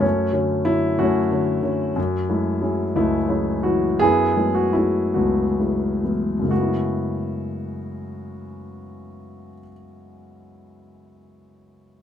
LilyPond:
<<
  \new Staff \with { instrumentName = "Grand piano" } { \time 6/8 \key fis \minor \tempo 4. = 48 cis'4 e'8 fis'4 r8 | r4. e'4 fis'8 | gis'8. fis'16 e'8 fis'4 r8 | fis'2.~ |
fis'2. | }
  \new Staff \with { instrumentName = "Grand piano" } { \time 6/8 \key fis \minor << { fis,8 <d fis cis'>8 <d fis cis'>8 fis,8 <d fis cis'>8 <d fis cis'>8 | fis,8 <fis gis a e'>8 <fis cis' e' gis'>8 cis,8 <fis cis' e' gis'>8 <e fis e'>8 | fis,8 <fis gis a b e'>8 <fis a b e' gis'>8 cis,8 <fis a b e' gis'>8 <e fis a b e'>8 | <fis, cis gis a b e'>2.~ |
<fis, cis gis a b e'>2. | } \\ { a4. <a cis'>4. | r4. <gis a>4. | <b e'>4. <a b>4. | r2. |
r2. | } >> }
>>